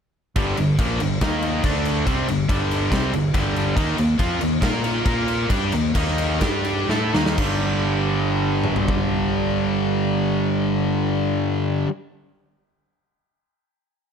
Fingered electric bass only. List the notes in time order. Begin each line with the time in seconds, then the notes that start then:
0.36 G1
0.59 G1
0.79 A#1
1.02 G1
1.22 D#2
1.64 D2
2.07 C2
2.29 G1
2.50 G1
2.92 C2
3.14 G1
3.34 G1
3.77 D#2
3.98 D#2
4.19 F2
4.42 D#2
4.62 A#2
5.05 A#2
5.50 G2
5.73 D#2
5.95 D#2
6.42 G2
6.89 A2
7.14 D#2
7.38 G1